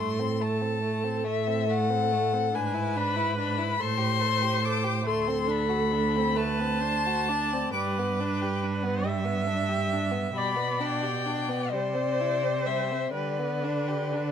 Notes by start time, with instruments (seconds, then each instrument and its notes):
Already playing: violin A3
0.00 cello A2, viola A4, violin C6
0.19 violin C4
0.41 violin A3 A5
0.61 violin C4
0.83 violin A3
1.04 violin C4
1.24 cello A2, violin A3 E5
1.47 violin C4
1.68 violin A3 F#5
1.90 violin C4
2.12 violin A3
2.33 violin C4
2.52 cello G#2, violin D4 G#5, viola B4
2.74 violin E4
2.96 violin D4 B5
3.16 violin E4
3.38 violin D4 B5
3.58 violin E4
3.80 cello A2, violin A4 C6, viola C5
3.98 violin G4
4.20 violin A4
4.42 violin G4
4.62 violin A4 D6
4.84 violin G4
5.04 cello D2, violin A3 C6, viola A4
5.28 violin C4
5.48 violin D4 B5
5.69 violin F#4
5.93 violin D4
6.16 violin C4
6.36 violin A3 A5, viola B4
6.59 violin C4
6.80 violin D4, viola C5
7.06 violin F#4
7.28 violin D4, viola D5
7.53 violin C4
7.73 cello G2, violin G3 D6, viola B4
7.99 violin B3
8.20 violin D4
8.42 violin G4
8.64 violin D4
8.84 violin B3
9.04 violin G3, viola E5
9.25 violin B3
9.47 violin D4
9.69 violin G4
9.93 violin D4
10.11 violin B3
10.34 cello B2, violin G3 B5, viola D5
10.56 violin B3
10.80 violin D4 G5
11.02 violin G4
11.26 violin D4
11.49 violin B3
11.71 cello C3, violin G3 D5, viola C5
11.95 violin C4
12.21 violin E4
12.43 violin C4
12.66 violin G3 E5
12.92 violin C4
13.14 cello D3, violin G3 D5, viola B4
13.39 violin B3
13.64 violin D4
13.88 violin G4
14.13 violin D4